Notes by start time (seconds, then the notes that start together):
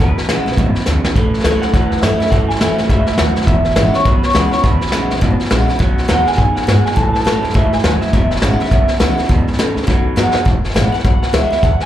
0.00 D2 E2 B2 B4, snare
0.17 muted upright bass stroke, snare
0.23 snare
0.29 B1 E2 C#3 E3 G#3 B3 E4, snare, hi-hat pedal
0.46 B1 B3 E4, snare
0.52 snare
0.57 G#1 E2 F#2 B2, kick, snare
0.75 muted upright bass stroke, snare
0.80 snare
0.86 D2 E2 G#2 C#3, snare, hi-hat pedal
1.04 muted upright bass stroke, snare
1.16 A1 A2 E3, kick, snare
1.34 snare
1.40 snare
1.44 C#2 A2 E3 F#3 A3 C#4 E4, snare, hi-hat pedal
1.62 C#4 E4 F#5, muted upright bass stroke, snare
1.68 snare
1.73 E2 A2 E3, kick, snare
1.91 F#5, muted upright bass stroke, snare
1.97 E5, snare
2.02 F#2 A2 E3 F#3 A3 C#4 E4, snare, hi-hat pedal
2.20 C#4 E4 E5, muted upright bass stroke, snare
2.27 snare
2.31 F#2 A2 E3 F#5, kick, snare
2.49 G#5, muted upright bass stroke, snare
2.56 snare
2.60 E2 A2 E3 F#3 A3 C#4 E4 E5, snare, hi-hat pedal
2.77 E2 C#4 E4 F#5, snare
2.84 snare
2.89 C#2 G#2 A2 E3 E5, kick, snare
3.07 E5, muted upright bass stroke, snare
3.12 snare
3.18 D#2 F#2 A2 F#3 F#5, snare, hi-hat pedal
3.36 muted upright bass stroke, snare
3.42 snare
3.46 E1 E2 B2 E5, kick, snare
3.65 muted upright bass stroke, snare
3.71 snare
3.76 G#1 E2 C#3 E3 G#3 B3 E4, snare, hi-hat pedal
3.94 B3 E4 C#5, snare
3.99 snare
4.05 B1 E2 B2 B4, kick, snare
4.23 C#5, muted upright bass stroke, snare
4.29 snare
4.33 C#2 E2 C#3 E3 G#3 B3 E4 B4, snare, hi-hat pedal
4.51 B3 E4 C#5, snare
4.58 snare
4.63 D2 E2 B2 B4, kick, snare
4.81 muted upright bass stroke, snare
4.87 snare
4.92 B1 E2 C#3 E3 G#3 B3 E4, snare, hi-hat pedal
5.10 B1, snare
5.16 snare
5.21 G#1 E2 B2, kick, snare
5.39 muted upright bass stroke, snare
5.45 snare
5.50 A#1 E2 C#3 E3 G#3 B3 E4, snare, hi-hat pedal
5.68 B3 E4, snare
5.74 snare
5.79 B1 B2 F#3, kick, snare
5.98 muted upright bass stroke, snare
6.04 snare
6.08 D#2 B2 F#3 G#3 B3 D#4 F#4, snare, hi-hat pedal
6.26 D#4 F#4 G#5, muted upright bass stroke, snare
6.33 snare
6.37 F#2 B2 C#3 F#3, kick, snare
6.56 F#5, muted upright bass stroke, snare
6.62 snare
6.67 G#2 B2 G#3, snare, hi-hat pedal
6.85 G#5, muted upright bass stroke, snare
6.92 snare
6.96 A1 A2 E3 A5, kick, snare
7.13 A5, muted upright bass stroke, snare
7.20 snare
7.25 E2 A2 E3 F#3 A3 C#4 E4, snare, hi-hat pedal
7.43 E2 C#4 E4, snare
7.50 snare
7.54 C#2 G#2 A2 E3 E5, kick, snare
7.73 G#5, snare
7.79 snare
7.84 D#2 F#2 A2 F#3 F#5, snare, hi-hat pedal
8.01 E5, muted upright bass stroke, snare
8.07 snare
8.13 E1 E2 B2 E5, kick, snare
8.31 F#5, muted upright bass stroke, snare
8.36 snare
8.41 G#1 E2 C#3 E3 G#3 B3 E4, snare, hi-hat pedal
8.60 B3 E4 E5, muted upright bass stroke, snare
8.66 snare
8.71 B1 E2 B2, kick, snare
8.88 snare
8.94 snare
9.00 C#2 E2 C#3 E3 G#3 B3 E4, snare, hi-hat pedal
9.18 B3 E4, muted upright bass stroke, snare
9.24 snare
9.29 D2 E2 G#2 B2, kick, snare
9.47 muted upright bass stroke, snare
9.53 snare
9.58 B1 E2 A2 C#3, snare, hi-hat pedal
9.75 C#2, snare
9.83 snare
9.87 B1 B2 F#3, kick, snare
10.05 muted upright bass stroke
10.16 F#2 B2 F#3 G#3 B3 D#4 F#4, snare, hi-hat pedal
10.34 D#4 F#4, muted upright bass stroke, snare
10.45 E1 E2, kick, snare
10.64 muted upright bass stroke, snare
10.70 E3, snare
10.75 G#1 G#3 B3 E4, snare, hi-hat pedal
10.92 B3 E4 F#5, muted upright bass stroke, snare
10.99 snare
11.04 B1 B2, kick, snare
11.22 F#5, muted upright bass stroke, snare
11.28 snare
11.33 C#2 E3 G#3 B3 E4 E5, snare, hi-hat pedal
11.50 B3 E4 E5, muted upright bass stroke, snare
11.57 snare
11.63 D2 E2 F#5, kick, snare
11.80 muted upright bass stroke, snare